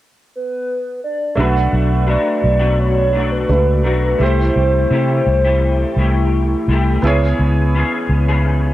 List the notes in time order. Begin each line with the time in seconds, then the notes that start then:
0.36 B4
1.04 D5
1.36 B1 F#3 A3 D4 F#4 F#5
1.40 F#4 B4
1.73 B1
2.07 F#3 A3 D4 F#4 D5
2.44 B1
2.60 B2 F#3 A3 D4 F#4
2.80 C#5
3.13 F#3 A3 D4 F#4
3.32 B4
3.49 C#2 A3 D4 F#4 B4
3.84 B1 F#3 A3 D4 F#4 B4
4.19 C2 E3 A3 E4 G4
4.23 G4 C5
4.56 C2
4.91 C3 E3 A3 E4 G4 C5
5.27 C2
5.45 C3 E3 A3 E4 G4
5.96 C2 E3 A3 E4
6.01 G4
6.68 C2 E3 A3 E4
6.72 G4
7.02 C#2 E3 B3 C#4 E4 G#4
7.07 G#4 C#5
7.39 C#2
7.75 E3 B3 C#4 G#4
8.09 C#2
8.28 C#3 E3 B3 C#4 G#4